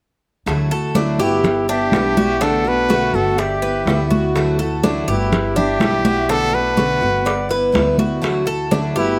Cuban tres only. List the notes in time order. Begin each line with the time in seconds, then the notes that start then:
0.71 A4
0.95 D4
1.20 G4
1.69 D4
2.17 F#4
2.41 D4
2.90 F#4
3.38 D5
3.62 B4
4.11 F#4
4.59 A4
4.83 D4
5.08 G4
5.56 D4
6.05 F#4
6.29 D4
6.77 F#4
7.26 D5
7.51 B4
7.99 F#4
8.47 A4
8.71 D4
8.96 G4